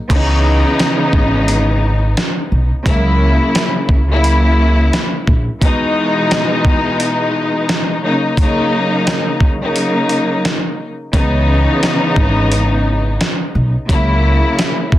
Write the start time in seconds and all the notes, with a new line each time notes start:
0.09 C#2 C#3 E3 B3 D#4, kick, closed hi-hat, crash
0.80 snare, closed hi-hat
1.13 G#1, kick
1.48 closed hi-hat
2.17 snare, closed hi-hat
2.52 B1
2.84 C#2 C#3 F#3 A#3 E4, kick, closed hi-hat
3.55 snare, closed hi-hat
3.89 C#2, kick
4.09 C#3 F#3 A#3 E4
4.24 closed hi-hat
4.93 snare, closed hi-hat
5.27 A#1, kick
5.60 B2 E3 G#3 D#4, kick, closed hi-hat
6.31 snare, closed hi-hat
6.65 kick
7.00 closed hi-hat
7.69 snare, closed hi-hat
8.00 C#3 F#3 A#3 D#4
8.37 C#3 F#3 A#3 D#4, kick, closed hi-hat
9.07 snare, closed hi-hat
9.40 kick
9.60 C#3 F#3 A#3 D#4
9.76 closed hi-hat
10.09 closed hi-hat
10.45 snare, closed hi-hat
11.12 C#2 C#3 E3 B3 D#4, kick, closed hi-hat
11.83 snare, closed hi-hat
12.16 G#1, kick
12.52 closed hi-hat
13.21 snare, closed hi-hat
13.55 B1
13.87 C#2 C#3 F#3 A#3 E4, kick, closed hi-hat
14.59 snare, closed hi-hat
14.92 C#2, kick